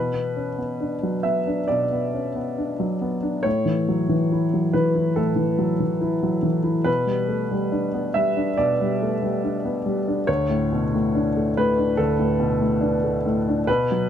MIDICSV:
0, 0, Header, 1, 2, 480
1, 0, Start_track
1, 0, Tempo, 882353
1, 1877, Time_signature, 4, 2, 24, 8
1, 2349, Tempo, 851064
1, 7863, End_track
2, 0, Start_track
2, 0, Title_t, "Upright piano"
2, 0, Program_c, 0, 0
2, 0, Note_on_c, 0, 47, 39
2, 0, Note_on_c, 0, 71, 59
2, 56, Control_c, 0, 64, 127
2, 72, Note_on_c, 0, 59, 27
2, 197, Note_on_c, 0, 61, 26
2, 267, Note_off_c, 0, 59, 0
2, 316, Note_on_c, 0, 59, 27
2, 317, Note_off_c, 0, 61, 0
2, 438, Note_on_c, 0, 62, 28
2, 509, Note_off_c, 0, 59, 0
2, 561, Note_on_c, 0, 54, 26
2, 629, Note_off_c, 0, 62, 0
2, 670, Note_on_c, 0, 76, 52
2, 674, Note_off_c, 0, 71, 0
2, 678, Note_on_c, 0, 59, 27
2, 750, Note_off_c, 0, 54, 0
2, 801, Note_on_c, 0, 62, 32
2, 869, Note_off_c, 0, 59, 0
2, 896, Note_off_c, 0, 47, 0
2, 912, Note_on_c, 0, 74, 52
2, 913, Note_off_c, 0, 76, 0
2, 919, Note_on_c, 0, 47, 34
2, 991, Note_off_c, 0, 62, 0
2, 1046, Note_on_c, 0, 59, 29
2, 1163, Note_on_c, 0, 61, 28
2, 1235, Note_off_c, 0, 59, 0
2, 1281, Note_off_c, 0, 61, 0
2, 1281, Note_on_c, 0, 59, 28
2, 1404, Note_on_c, 0, 62, 31
2, 1474, Note_off_c, 0, 59, 0
2, 1521, Note_on_c, 0, 54, 29
2, 1595, Note_off_c, 0, 62, 0
2, 1639, Note_on_c, 0, 59, 29
2, 1712, Note_off_c, 0, 54, 0
2, 1755, Note_on_c, 0, 62, 31
2, 1830, Note_off_c, 0, 59, 0
2, 1858, Note_off_c, 0, 47, 0
2, 1864, Note_on_c, 0, 73, 70
2, 1873, Note_on_c, 0, 45, 41
2, 1875, Note_off_c, 0, 62, 0
2, 1875, Note_off_c, 0, 74, 0
2, 1888, Control_c, 0, 64, 0
2, 1986, Control_c, 0, 64, 127
2, 1989, Note_on_c, 0, 52, 30
2, 2114, Note_on_c, 0, 54, 29
2, 2181, Note_off_c, 0, 52, 0
2, 2227, Note_on_c, 0, 52, 32
2, 2231, Note_off_c, 0, 54, 0
2, 2351, Note_on_c, 0, 64, 32
2, 2420, Note_off_c, 0, 52, 0
2, 2472, Note_on_c, 0, 54, 31
2, 2545, Note_off_c, 0, 64, 0
2, 2584, Note_on_c, 0, 71, 55
2, 2586, Note_off_c, 0, 73, 0
2, 2588, Note_on_c, 0, 52, 29
2, 2666, Note_off_c, 0, 54, 0
2, 2705, Note_on_c, 0, 64, 36
2, 2784, Note_off_c, 0, 52, 0
2, 2809, Note_off_c, 0, 45, 0
2, 2824, Note_on_c, 0, 69, 60
2, 2829, Note_on_c, 0, 45, 38
2, 2830, Note_off_c, 0, 71, 0
2, 2902, Note_off_c, 0, 64, 0
2, 2937, Note_on_c, 0, 52, 30
2, 3064, Note_on_c, 0, 54, 32
2, 3137, Note_off_c, 0, 52, 0
2, 3186, Note_on_c, 0, 52, 31
2, 3188, Note_off_c, 0, 54, 0
2, 3305, Note_on_c, 0, 64, 35
2, 3381, Note_off_c, 0, 52, 0
2, 3428, Note_on_c, 0, 54, 30
2, 3500, Note_off_c, 0, 64, 0
2, 3539, Note_on_c, 0, 52, 32
2, 3546, Note_off_c, 0, 69, 0
2, 3621, Note_off_c, 0, 54, 0
2, 3657, Note_on_c, 0, 64, 36
2, 3736, Note_off_c, 0, 52, 0
2, 3766, Note_off_c, 0, 45, 0
2, 3774, Note_on_c, 0, 71, 76
2, 3778, Note_on_c, 0, 47, 49
2, 3784, Note_off_c, 0, 64, 0
2, 3800, Control_c, 0, 64, 0
2, 3893, Control_c, 0, 64, 127
2, 3897, Note_on_c, 0, 55, 30
2, 4022, Note_on_c, 0, 57, 30
2, 4098, Note_off_c, 0, 55, 0
2, 4149, Note_off_c, 0, 57, 0
2, 4151, Note_on_c, 0, 55, 34
2, 4268, Note_on_c, 0, 62, 38
2, 4347, Note_off_c, 0, 55, 0
2, 4391, Note_on_c, 0, 59, 33
2, 4465, Note_off_c, 0, 62, 0
2, 4505, Note_on_c, 0, 76, 66
2, 4509, Note_off_c, 0, 71, 0
2, 4513, Note_on_c, 0, 55, 33
2, 4586, Note_off_c, 0, 59, 0
2, 4632, Note_on_c, 0, 62, 40
2, 4706, Note_off_c, 0, 55, 0
2, 4727, Note_off_c, 0, 47, 0
2, 4750, Note_off_c, 0, 76, 0
2, 4750, Note_on_c, 0, 74, 70
2, 4754, Note_on_c, 0, 47, 43
2, 4825, Note_off_c, 0, 62, 0
2, 4882, Note_on_c, 0, 55, 35
2, 5004, Note_on_c, 0, 57, 33
2, 5069, Note_off_c, 0, 55, 0
2, 5118, Note_on_c, 0, 55, 35
2, 5119, Note_off_c, 0, 57, 0
2, 5237, Note_on_c, 0, 62, 36
2, 5308, Note_off_c, 0, 55, 0
2, 5355, Note_on_c, 0, 59, 36
2, 5427, Note_off_c, 0, 62, 0
2, 5474, Note_on_c, 0, 55, 36
2, 5545, Note_off_c, 0, 59, 0
2, 5598, Note_on_c, 0, 62, 40
2, 5664, Note_off_c, 0, 55, 0
2, 5688, Note_off_c, 0, 47, 0
2, 5708, Note_off_c, 0, 74, 0
2, 5708, Note_on_c, 0, 73, 84
2, 5713, Note_on_c, 0, 38, 49
2, 5714, Note_off_c, 0, 62, 0
2, 5721, Control_c, 0, 64, 0
2, 5803, Control_c, 0, 64, 127
2, 5831, Note_on_c, 0, 45, 38
2, 5962, Note_on_c, 0, 47, 36
2, 6024, Note_off_c, 0, 45, 0
2, 6077, Note_off_c, 0, 47, 0
2, 6086, Note_on_c, 0, 45, 38
2, 6203, Note_on_c, 0, 62, 41
2, 6273, Note_off_c, 0, 45, 0
2, 6326, Note_on_c, 0, 57, 39
2, 6392, Note_off_c, 0, 62, 0
2, 6434, Note_off_c, 0, 73, 0
2, 6441, Note_on_c, 0, 71, 70
2, 6443, Note_on_c, 0, 45, 38
2, 6513, Note_off_c, 0, 57, 0
2, 6557, Note_on_c, 0, 62, 42
2, 6631, Note_off_c, 0, 45, 0
2, 6653, Note_off_c, 0, 38, 0
2, 6667, Note_on_c, 0, 69, 74
2, 6677, Note_off_c, 0, 71, 0
2, 6677, Note_on_c, 0, 38, 46
2, 6746, Note_off_c, 0, 62, 0
2, 6790, Note_on_c, 0, 45, 41
2, 6905, Note_on_c, 0, 47, 41
2, 6978, Note_off_c, 0, 45, 0
2, 7023, Note_on_c, 0, 45, 37
2, 7025, Note_off_c, 0, 47, 0
2, 7139, Note_on_c, 0, 62, 45
2, 7214, Note_off_c, 0, 45, 0
2, 7268, Note_on_c, 0, 57, 39
2, 7332, Note_off_c, 0, 62, 0
2, 7380, Note_off_c, 0, 69, 0
2, 7393, Note_on_c, 0, 45, 37
2, 7458, Note_off_c, 0, 57, 0
2, 7520, Note_on_c, 0, 62, 41
2, 7582, Note_off_c, 0, 45, 0
2, 7604, Note_off_c, 0, 38, 0
2, 7626, Note_on_c, 0, 71, 78
2, 7631, Note_on_c, 0, 47, 56
2, 7633, Note_off_c, 0, 62, 0
2, 7636, Control_c, 0, 64, 0
2, 7721, Control_c, 0, 64, 127
2, 7762, Note_on_c, 0, 54, 38
2, 7863, Note_off_c, 0, 47, 0
2, 7863, Note_off_c, 0, 54, 0
2, 7863, Note_off_c, 0, 71, 0
2, 7863, End_track
0, 0, End_of_file